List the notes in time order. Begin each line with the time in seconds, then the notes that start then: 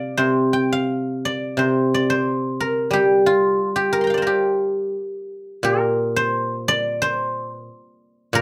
Already playing: C3 G4 A#4 C5 D5 F5 G5
0.17 C3 C5
0.53 G5
0.73 F5
1.25 D5
1.57 C3 C5
1.94 D5
2.10 C5
2.60 A#4
2.91 G3 G4
3.26 F4
3.76 G4
3.93 A#4
4.01 A#5 C6
4.07 F5 G5
4.14 C5 D5
4.22 A#4
4.27 G4
5.63 A#2 A#4
6.16 C5
6.68 D5
7.02 C5
7.51 B4
7.63 A#4
8.33 A#2 A#4